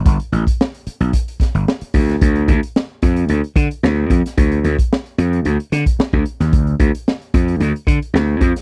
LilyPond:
<<
  \new Staff \with { instrumentName = "Slap bass" } { \clef bass \time 4/4 \key d \dorian \tempo 4 = 111 g,,16 r16 a,,16 r4 b,,16 r8. g,,16 r8 d,8 | d,8 d,16 r8. f,8 d,16 r16 d16 r16 d,8 f,16 r16 | d,8 d,16 r8. f,8 d,16 r16 d16 r8 d,16 r16 ees,16 | d,8 d,16 r8. f,8 d,16 r16 d16 r16 d,8 f,16 r16 | }
  \new DrumStaff \with { instrumentName = "Drums" } \drummode { \time 4/4 <hh bd>16 hh16 hh16 <hh bd>16 sn16 hh16 hh16 hh16 <hh bd>16 hh16 <hh bd sn>16 hh16 sn16 hh16 <hho bd>16 <hh sn>16 | <hh bd>16 hh16 <hh bd>16 hh16 sn8 <hh bd>16 hh16 hh16 hh16 <hh bd>16 hh16 sn8 <hh bd>16 <hh sn>16 | <hh bd>16 hh16 hh16 <hh bd>16 sn16 hh16 hh16 hh16 hh16 hh16 <hh sn>16 <hh bd>16 sn16 bd16 hh16 <hh sn>16 | <hh bd>16 hh16 <hh bd>16 hh16 sn16 hh16 <hh bd>16 hh16 hh16 hh16 <hh bd>16 hh16 sn8 <hh bd>16 <hh sn>16 | }
>>